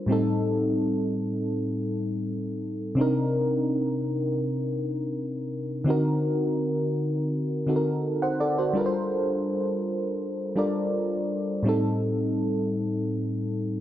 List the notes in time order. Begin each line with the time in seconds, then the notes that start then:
0.06 A2 G3 C4
0.11 D#4 A4
2.95 C3 C4 D4
3.00 D#4 A#4
5.84 D3 C4 D#4
5.89 F#4 A#4
7.67 D3 C4 D#4 F#4 A4
7.76 A#4
8.22 C5 F#5
8.40 A4 D5
8.58 F#4 C5
8.73 G3 D4 F4 A4
8.78 A#4 B4
8.86 C5
10.56 G3 D4 F4 A4 A#4 D5
11.63 A2 G3 C4
11.67 D#4 A4